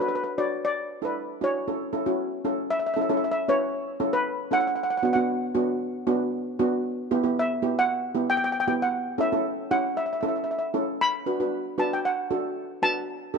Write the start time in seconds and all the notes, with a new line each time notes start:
0.00 D4 F#4 A4 B4
0.08 B4
0.15 B4
0.24 B4
0.38 D4 F#4 C#5 D5
0.65 D5
1.02 D4 E4 A4 B4
1.41 D4 E4 F#4 C#5
1.68 C#4 E4 A4
1.93 C#4 E4 A4
2.06 C#4 E4 F#4
2.45 C#4 E4 A4
2.71 E5
2.79 E5
2.86 E5
2.94 C#4 E4 A4 E5
3.01 E5
3.09 C#4 E4 A4 E5
3.17 E5
3.24 E5
3.32 E5
3.48 C#4 E4 B4 C#5
4.00 C#4 E4 A4
4.13 B4
4.51 C#4 E4 A4 F#5
4.60 F#5
4.67 F#5
4.76 F#5
4.83 F#5
4.90 F#5
4.97 F#5
5.03 B3 D4 F#4 F#5
5.13 B3 D4 F#4 F#5
5.55 B3 D4 F#4
6.07 B3 D4 F#4
6.59 B3 D4 F#4
7.11 B3 E4 G4
7.23 B3 E4 G4
7.39 E5
7.62 B3 E4 G4
7.79 F#5
8.15 B3 E4 G4
8.30 G5
8.37 G5
8.44 G5
8.52 G5
8.60 G5
8.67 B3 E4 G4 G5
8.82 F#5
9.18 C#4 E4 A4 E5
9.32 C#4 E4 A4
9.71 C#4 E4 G4 F#5
9.97 E5
10.06 E5
10.13 E5
10.21 C#4 E4 A4 E5
10.28 E5
10.36 E5
10.44 E5
10.51 E5
10.59 E5
10.74 C#4 E4 A4
11.01 B5
11.26 D4 F#4 B4
11.40 D4 F#4 B4
11.78 D4 F#4 B4 A5
11.93 G5
12.05 F#5
12.31 D4 F#4 A4
12.82 D4 F#4 B4 A5
13.34 D4 G4 A4